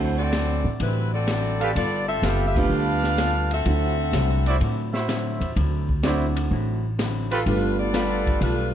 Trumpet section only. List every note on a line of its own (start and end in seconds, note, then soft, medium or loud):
1.60 1.71 G4 medium
1.60 1.70 A4 medium
1.60 1.70 B4 medium
1.60 1.70 F5 medium
2.22 2.96 G4 medium
2.22 2.97 A4 medium
2.22 2.97 B4 medium
2.22 2.97 F5 medium
4.46 4.56 E4 medium
4.46 4.56 F#4 medium
4.46 4.56 C5 medium
4.46 4.56 D5 loud
4.93 5.53 E4 medium
4.93 5.53 F#4 medium
4.93 5.53 C5 medium
4.93 5.53 E5 medium
6.03 6.25 E4 medium
6.03 6.25 F#4 medium
6.03 6.25 C5 medium
6.03 6.25 D5 medium
7.31 7.41 F4 medium
7.31 7.41 G4 medium
7.31 7.41 A4 medium
7.31 7.41 B4 loud
7.92 8.66 F4 medium
7.92 8.67 G4 medium
7.92 8.66 A4 medium
7.92 8.66 B4 medium